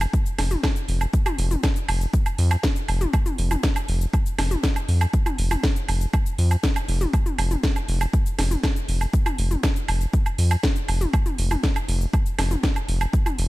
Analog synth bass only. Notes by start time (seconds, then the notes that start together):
0.39 F1
0.89 F1
1.39 F1
1.89 F1
2.38 F2
2.88 F1
3.38 F1
3.88 F1
4.38 F1
4.88 F2
5.38 F1
5.88 F1
6.38 F2
6.88 F1
7.38 F1
7.88 F1
8.38 F1
8.88 F1
9.38 F1
9.88 F1
10.38 F2
10.88 F1
11.38 F1
11.88 F1
12.38 F1
12.88 F1
13.38 F1